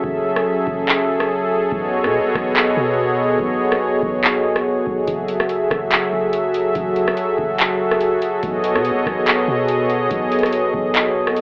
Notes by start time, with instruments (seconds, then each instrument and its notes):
Already playing: analog synth pad F#3 C#4 G#4 A4 E5
0.04 808-style bass F#1, kick
0.36 cross-stick
0.67 808-style bass F#1, kick
0.89 clap
1.20 cross-stick
1.72 808-style bass B1, analog synth pad B3 F#4 C#5 D#5, kick
2.03 808-style bass B2, cross-stick
2.19 808-style bass B1
2.35 808-style bass B1, kick, cross-stick
2.56 clap
2.77 808-style bass B2
3.40 808-style bass B1, kick
3.72 cross-stick
4.03 808-style bass B1, kick
4.24 clap
4.56 cross-stick
4.87 808-style bass B1, kick
5.07 808-style bass F#1, analog synth pad F#3 A4 E5, kick, closed hi-hat
5.28 closed hi-hat
5.40 cross-stick
5.49 closed hi-hat
5.71 808-style bass F#1, kick, cross-stick
5.91 clap, closed hi-hat
6.12 808-style bass F#1
6.33 closed hi-hat
6.54 closed hi-hat
6.75 808-style bass F#1, kick, closed hi-hat
6.96 closed hi-hat
7.08 cross-stick
7.17 closed hi-hat
7.38 808-style bass F#1, kick
7.59 clap, closed hi-hat
7.91 cross-stick
8.01 closed hi-hat
8.22 closed hi-hat
8.43 808-style bass B1, analog synth pad B3 G#4 C#5 D#5, kick, closed hi-hat
8.64 closed hi-hat
8.74 808-style bass B2, cross-stick
8.85 closed hi-hat
8.90 808-style bass B1
9.06 808-style bass B1, kick, cross-stick
9.27 clap, closed hi-hat
9.48 808-style bass B2
9.69 closed hi-hat
9.90 closed hi-hat
10.11 808-style bass B1, kick, closed hi-hat
10.32 closed hi-hat
10.39 closed hi-hat
10.43 cross-stick, closed hi-hat
10.53 closed hi-hat
10.74 808-style bass B1, kick
10.94 clap, closed hi-hat
11.27 cross-stick
11.36 closed hi-hat